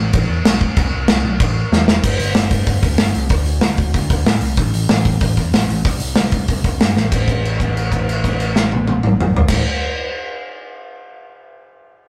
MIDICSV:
0, 0, Header, 1, 3, 480
1, 0, Start_track
1, 0, Key_signature, 0, "minor"
1, 0, Tempo, 316957
1, 1163, Time_signature, 4, 2, 24, 8
1, 8849, Tempo, 319829
1, 18209, End_track
2, 0, Start_track
2, 0, Title_t, "Picked electric bass"
2, 0, Program_c, 0, 34
2, 209, Note_on_c, 0, 33, 95
2, 364, Note_off_c, 0, 33, 0
2, 435, Note_on_c, 0, 40, 105
2, 594, Note_off_c, 0, 40, 0
2, 677, Note_on_c, 0, 35, 94
2, 990, Note_off_c, 0, 35, 0
2, 1165, Note_on_c, 0, 36, 103
2, 1320, Note_off_c, 0, 36, 0
2, 1426, Note_on_c, 0, 36, 93
2, 1574, Note_off_c, 0, 36, 0
2, 1661, Note_on_c, 0, 36, 88
2, 1810, Note_off_c, 0, 36, 0
2, 1887, Note_on_c, 0, 35, 83
2, 2040, Note_off_c, 0, 35, 0
2, 2123, Note_on_c, 0, 33, 90
2, 2433, Note_off_c, 0, 33, 0
2, 2605, Note_on_c, 0, 40, 102
2, 2759, Note_off_c, 0, 40, 0
2, 2842, Note_on_c, 0, 28, 100
2, 2996, Note_off_c, 0, 28, 0
2, 3082, Note_on_c, 0, 31, 92
2, 3284, Note_off_c, 0, 31, 0
2, 3321, Note_on_c, 0, 31, 92
2, 3523, Note_off_c, 0, 31, 0
2, 3566, Note_on_c, 0, 31, 89
2, 3970, Note_off_c, 0, 31, 0
2, 4038, Note_on_c, 0, 31, 85
2, 4242, Note_off_c, 0, 31, 0
2, 4284, Note_on_c, 0, 38, 96
2, 4485, Note_off_c, 0, 38, 0
2, 4524, Note_on_c, 0, 31, 92
2, 4725, Note_off_c, 0, 31, 0
2, 4776, Note_on_c, 0, 36, 88
2, 4972, Note_off_c, 0, 36, 0
2, 4993, Note_on_c, 0, 38, 98
2, 5199, Note_off_c, 0, 38, 0
2, 5240, Note_on_c, 0, 38, 85
2, 5443, Note_off_c, 0, 38, 0
2, 5500, Note_on_c, 0, 38, 91
2, 5695, Note_off_c, 0, 38, 0
2, 5730, Note_on_c, 0, 38, 67
2, 5929, Note_off_c, 0, 38, 0
2, 5966, Note_on_c, 0, 38, 87
2, 6167, Note_off_c, 0, 38, 0
2, 6213, Note_on_c, 0, 38, 87
2, 6411, Note_off_c, 0, 38, 0
2, 6438, Note_on_c, 0, 45, 90
2, 6643, Note_off_c, 0, 45, 0
2, 6677, Note_on_c, 0, 36, 91
2, 6883, Note_off_c, 0, 36, 0
2, 6924, Note_on_c, 0, 33, 90
2, 7128, Note_off_c, 0, 33, 0
2, 7174, Note_on_c, 0, 33, 83
2, 7373, Note_off_c, 0, 33, 0
2, 7405, Note_on_c, 0, 33, 83
2, 7813, Note_off_c, 0, 33, 0
2, 7888, Note_on_c, 0, 33, 82
2, 8091, Note_off_c, 0, 33, 0
2, 8135, Note_on_c, 0, 40, 84
2, 8335, Note_off_c, 0, 40, 0
2, 8359, Note_on_c, 0, 33, 94
2, 8567, Note_off_c, 0, 33, 0
2, 8601, Note_on_c, 0, 33, 97
2, 8809, Note_off_c, 0, 33, 0
2, 8858, Note_on_c, 0, 36, 93
2, 9057, Note_off_c, 0, 36, 0
2, 9094, Note_on_c, 0, 36, 81
2, 9294, Note_off_c, 0, 36, 0
2, 9333, Note_on_c, 0, 36, 75
2, 9533, Note_off_c, 0, 36, 0
2, 9571, Note_on_c, 0, 36, 68
2, 9772, Note_off_c, 0, 36, 0
2, 9814, Note_on_c, 0, 36, 85
2, 10014, Note_off_c, 0, 36, 0
2, 10050, Note_on_c, 0, 36, 84
2, 10251, Note_off_c, 0, 36, 0
2, 10280, Note_on_c, 0, 43, 85
2, 10486, Note_off_c, 0, 43, 0
2, 10513, Note_on_c, 0, 33, 82
2, 10721, Note_off_c, 0, 33, 0
2, 10759, Note_on_c, 0, 33, 86
2, 14195, Note_off_c, 0, 33, 0
2, 14323, Note_on_c, 0, 33, 89
2, 14520, Note_off_c, 0, 33, 0
2, 18209, End_track
3, 0, Start_track
3, 0, Title_t, "Drums"
3, 199, Note_on_c, 9, 49, 63
3, 207, Note_on_c, 9, 36, 119
3, 350, Note_off_c, 9, 49, 0
3, 358, Note_off_c, 9, 36, 0
3, 685, Note_on_c, 9, 49, 75
3, 688, Note_on_c, 9, 38, 127
3, 836, Note_off_c, 9, 49, 0
3, 839, Note_off_c, 9, 38, 0
3, 925, Note_on_c, 9, 36, 89
3, 1076, Note_off_c, 9, 36, 0
3, 1159, Note_on_c, 9, 49, 61
3, 1165, Note_on_c, 9, 36, 105
3, 1310, Note_off_c, 9, 49, 0
3, 1317, Note_off_c, 9, 36, 0
3, 1635, Note_on_c, 9, 49, 68
3, 1638, Note_on_c, 9, 38, 125
3, 1786, Note_off_c, 9, 49, 0
3, 1789, Note_off_c, 9, 38, 0
3, 2122, Note_on_c, 9, 36, 114
3, 2123, Note_on_c, 9, 49, 67
3, 2274, Note_off_c, 9, 36, 0
3, 2274, Note_off_c, 9, 49, 0
3, 2613, Note_on_c, 9, 38, 74
3, 2765, Note_off_c, 9, 38, 0
3, 2848, Note_on_c, 9, 38, 100
3, 2999, Note_off_c, 9, 38, 0
3, 3084, Note_on_c, 9, 36, 108
3, 3085, Note_on_c, 9, 57, 104
3, 3236, Note_off_c, 9, 36, 0
3, 3236, Note_off_c, 9, 57, 0
3, 3325, Note_on_c, 9, 46, 62
3, 3477, Note_off_c, 9, 46, 0
3, 3555, Note_on_c, 9, 46, 75
3, 3558, Note_on_c, 9, 38, 114
3, 3706, Note_off_c, 9, 46, 0
3, 3709, Note_off_c, 9, 38, 0
3, 3799, Note_on_c, 9, 46, 66
3, 3801, Note_on_c, 9, 36, 88
3, 3950, Note_off_c, 9, 46, 0
3, 3953, Note_off_c, 9, 36, 0
3, 4038, Note_on_c, 9, 46, 72
3, 4043, Note_on_c, 9, 36, 98
3, 4190, Note_off_c, 9, 46, 0
3, 4195, Note_off_c, 9, 36, 0
3, 4282, Note_on_c, 9, 46, 58
3, 4283, Note_on_c, 9, 36, 84
3, 4433, Note_off_c, 9, 46, 0
3, 4435, Note_off_c, 9, 36, 0
3, 4513, Note_on_c, 9, 46, 84
3, 4516, Note_on_c, 9, 38, 118
3, 4664, Note_off_c, 9, 46, 0
3, 4667, Note_off_c, 9, 38, 0
3, 4769, Note_on_c, 9, 46, 54
3, 4921, Note_off_c, 9, 46, 0
3, 4988, Note_on_c, 9, 46, 70
3, 5000, Note_on_c, 9, 36, 105
3, 5139, Note_off_c, 9, 46, 0
3, 5152, Note_off_c, 9, 36, 0
3, 5231, Note_on_c, 9, 46, 53
3, 5383, Note_off_c, 9, 46, 0
3, 5470, Note_on_c, 9, 46, 78
3, 5473, Note_on_c, 9, 38, 122
3, 5622, Note_off_c, 9, 46, 0
3, 5625, Note_off_c, 9, 38, 0
3, 5716, Note_on_c, 9, 46, 54
3, 5728, Note_on_c, 9, 36, 77
3, 5867, Note_off_c, 9, 46, 0
3, 5879, Note_off_c, 9, 36, 0
3, 5970, Note_on_c, 9, 36, 93
3, 5971, Note_on_c, 9, 46, 72
3, 6121, Note_off_c, 9, 36, 0
3, 6123, Note_off_c, 9, 46, 0
3, 6210, Note_on_c, 9, 46, 56
3, 6211, Note_on_c, 9, 36, 83
3, 6361, Note_off_c, 9, 46, 0
3, 6363, Note_off_c, 9, 36, 0
3, 6456, Note_on_c, 9, 46, 75
3, 6459, Note_on_c, 9, 38, 113
3, 6607, Note_off_c, 9, 46, 0
3, 6610, Note_off_c, 9, 38, 0
3, 6677, Note_on_c, 9, 46, 58
3, 6828, Note_off_c, 9, 46, 0
3, 6917, Note_on_c, 9, 46, 65
3, 6927, Note_on_c, 9, 36, 104
3, 7069, Note_off_c, 9, 46, 0
3, 7079, Note_off_c, 9, 36, 0
3, 7177, Note_on_c, 9, 46, 55
3, 7328, Note_off_c, 9, 46, 0
3, 7406, Note_on_c, 9, 46, 82
3, 7409, Note_on_c, 9, 38, 118
3, 7558, Note_off_c, 9, 46, 0
3, 7561, Note_off_c, 9, 38, 0
3, 7648, Note_on_c, 9, 46, 60
3, 7653, Note_on_c, 9, 36, 84
3, 7799, Note_off_c, 9, 46, 0
3, 7804, Note_off_c, 9, 36, 0
3, 7884, Note_on_c, 9, 46, 74
3, 7892, Note_on_c, 9, 36, 92
3, 8035, Note_off_c, 9, 46, 0
3, 8044, Note_off_c, 9, 36, 0
3, 8134, Note_on_c, 9, 46, 56
3, 8136, Note_on_c, 9, 36, 78
3, 8286, Note_off_c, 9, 46, 0
3, 8288, Note_off_c, 9, 36, 0
3, 8385, Note_on_c, 9, 46, 92
3, 8388, Note_on_c, 9, 38, 123
3, 8537, Note_off_c, 9, 46, 0
3, 8540, Note_off_c, 9, 38, 0
3, 8637, Note_on_c, 9, 46, 58
3, 8788, Note_off_c, 9, 46, 0
3, 8856, Note_on_c, 9, 46, 73
3, 8859, Note_on_c, 9, 36, 108
3, 9006, Note_off_c, 9, 46, 0
3, 9009, Note_off_c, 9, 36, 0
3, 9085, Note_on_c, 9, 46, 62
3, 9235, Note_off_c, 9, 46, 0
3, 9315, Note_on_c, 9, 46, 68
3, 9318, Note_on_c, 9, 38, 97
3, 9465, Note_off_c, 9, 46, 0
3, 9468, Note_off_c, 9, 38, 0
3, 9559, Note_on_c, 9, 46, 55
3, 9569, Note_on_c, 9, 36, 78
3, 9709, Note_off_c, 9, 46, 0
3, 9719, Note_off_c, 9, 36, 0
3, 9807, Note_on_c, 9, 46, 71
3, 9812, Note_on_c, 9, 36, 84
3, 9957, Note_off_c, 9, 46, 0
3, 9962, Note_off_c, 9, 36, 0
3, 10048, Note_on_c, 9, 46, 55
3, 10050, Note_on_c, 9, 36, 87
3, 10198, Note_off_c, 9, 46, 0
3, 10201, Note_off_c, 9, 36, 0
3, 10293, Note_on_c, 9, 46, 75
3, 10296, Note_on_c, 9, 38, 113
3, 10444, Note_off_c, 9, 46, 0
3, 10447, Note_off_c, 9, 38, 0
3, 10534, Note_on_c, 9, 38, 58
3, 10684, Note_off_c, 9, 38, 0
3, 10762, Note_on_c, 9, 57, 74
3, 10764, Note_on_c, 9, 36, 92
3, 10912, Note_off_c, 9, 57, 0
3, 10914, Note_off_c, 9, 36, 0
3, 11002, Note_on_c, 9, 36, 70
3, 11016, Note_on_c, 9, 57, 42
3, 11152, Note_off_c, 9, 36, 0
3, 11166, Note_off_c, 9, 57, 0
3, 11265, Note_on_c, 9, 49, 42
3, 11415, Note_off_c, 9, 49, 0
3, 11486, Note_on_c, 9, 36, 60
3, 11499, Note_on_c, 9, 57, 43
3, 11636, Note_off_c, 9, 36, 0
3, 11649, Note_off_c, 9, 57, 0
3, 11739, Note_on_c, 9, 49, 44
3, 11889, Note_off_c, 9, 49, 0
3, 11961, Note_on_c, 9, 36, 58
3, 11968, Note_on_c, 9, 57, 48
3, 12111, Note_off_c, 9, 36, 0
3, 12118, Note_off_c, 9, 57, 0
3, 12219, Note_on_c, 9, 49, 51
3, 12369, Note_off_c, 9, 49, 0
3, 12447, Note_on_c, 9, 36, 60
3, 12458, Note_on_c, 9, 57, 48
3, 12597, Note_off_c, 9, 36, 0
3, 12608, Note_off_c, 9, 57, 0
3, 12684, Note_on_c, 9, 49, 47
3, 12834, Note_off_c, 9, 49, 0
3, 12925, Note_on_c, 9, 38, 93
3, 13075, Note_off_c, 9, 38, 0
3, 13168, Note_on_c, 9, 48, 85
3, 13318, Note_off_c, 9, 48, 0
3, 13399, Note_on_c, 9, 48, 95
3, 13549, Note_off_c, 9, 48, 0
3, 13637, Note_on_c, 9, 47, 80
3, 13787, Note_off_c, 9, 47, 0
3, 13895, Note_on_c, 9, 45, 98
3, 14045, Note_off_c, 9, 45, 0
3, 14134, Note_on_c, 9, 43, 113
3, 14284, Note_off_c, 9, 43, 0
3, 14310, Note_on_c, 9, 57, 99
3, 14313, Note_on_c, 9, 38, 79
3, 14314, Note_on_c, 9, 36, 99
3, 14460, Note_off_c, 9, 57, 0
3, 14463, Note_off_c, 9, 38, 0
3, 14464, Note_off_c, 9, 36, 0
3, 18209, End_track
0, 0, End_of_file